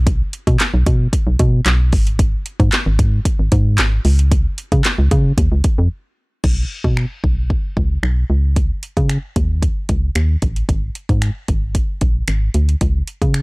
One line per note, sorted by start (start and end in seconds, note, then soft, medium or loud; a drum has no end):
0.00 0.22 B1 loud
0.07 kick loud
0.07 closed hi-hat medium
0.33 closed hi-hat medium
0.47 0.57 B2 loud
0.47 kick medium
0.47 closed hi-hat medium
0.60 snare medium
0.60 clap loud
0.60 closed hi-hat loud
0.74 0.84 B1 loud
0.86 1.08 B2 medium
0.86 kick loud
0.86 closed hi-hat medium
1.13 kick medium
1.13 closed hi-hat loud
1.27 1.37 B1 loud
1.39 1.61 B2 loud
1.39 kick loud
1.39 closed hi-hat medium
1.66 1.94 B1 loud
1.66 snare medium
1.66 clap loud
1.66 closed hi-hat loud
1.93 2.35 G#1 loud
1.93 kick medium
1.93 open hi-hat medium
2.07 closed hi-hat soft
2.19 kick loud
2.19 closed hi-hat medium
2.46 closed hi-hat medium
2.60 2.70 G#2 loud
2.60 kick loud
2.60 closed hi-hat soft
2.72 snare medium
2.72 clap loud
2.72 closed hi-hat loud
2.86 3.01 G#1 loud
2.99 3.20 G#2 loud
2.99 kick loud
2.99 closed hi-hat medium
3.25 kick medium
3.25 closed hi-hat loud
3.39 3.49 G#1 loud
3.52 3.80 G#2 loud
3.52 kick loud
3.52 closed hi-hat medium
3.78 4.00 G#1 loud
3.78 snare medium
3.78 clap loud
3.78 closed hi-hat loud
4.05 4.47 C#2 loud
4.05 open hi-hat medium
4.19 closed hi-hat medium
4.32 kick loud
4.32 closed hi-hat medium
4.58 closed hi-hat medium
4.72 4.82 C#3 loud
4.72 kick loud
4.72 closed hi-hat soft
4.85 snare medium
4.85 clap loud
4.85 closed hi-hat loud
4.99 5.09 C#2 loud
5.11 5.32 C#3 loud
5.11 kick loud
5.11 closed hi-hat medium
5.38 5.49 D#2 loud
5.38 kick medium
5.38 closed hi-hat loud
5.52 5.62 C#2 medium
5.64 kick loud
5.64 closed hi-hat medium
5.78 5.88 F2 medium
6.44 6.65 B1 loud
6.44 kick loud
6.44 crash medium
6.84 7.06 B2 loud
6.84 kick medium
6.97 finger snap loud
7.24 7.56 B1 medium
7.24 kick medium
7.50 kick medium
7.77 7.98 C#2 medium
7.77 kick medium
8.03 8.24 B1 medium
8.03 finger snap loud
8.30 8.72 C#2 medium
8.56 kick loud
8.56 closed hi-hat medium
8.83 closed hi-hat medium
8.97 9.18 C#3 medium
8.97 kick medium
8.97 closed hi-hat soft
9.09 finger snap loud
9.09 closed hi-hat medium
9.36 9.68 D#2 medium
9.36 kick medium
9.36 closed hi-hat medium
9.62 kick medium
9.62 closed hi-hat medium
9.89 10.10 C#2 medium
9.89 kick loud
9.89 closed hi-hat medium
10.15 10.37 D#2 medium
10.15 finger snap loud
10.15 closed hi-hat medium
10.42 10.63 A1 medium
10.42 kick medium
10.42 closed hi-hat medium
10.56 closed hi-hat soft
10.69 10.90 G#1 loud
10.69 kick loud
10.69 closed hi-hat medium
10.95 closed hi-hat medium
11.09 11.30 G#2 loud
11.09 kick medium
11.09 closed hi-hat soft
11.22 finger snap loud
11.22 closed hi-hat medium
11.48 11.81 G#1 medium
11.48 kick loud
11.48 closed hi-hat medium
11.75 kick medium
11.75 closed hi-hat medium
12.01 12.23 A#1 medium
12.01 kick loud
12.01 closed hi-hat medium
12.28 12.49 G#1 medium
12.28 finger snap loud
12.28 closed hi-hat medium
12.54 12.76 D2 medium
12.54 closed hi-hat medium
12.69 closed hi-hat soft
12.81 13.02 C#2 loud
12.81 kick loud
12.81 closed hi-hat medium
13.07 closed hi-hat medium
13.22 13.42 C#3 medium
13.22 kick medium
13.22 closed hi-hat soft
13.34 finger snap loud
13.34 closed hi-hat medium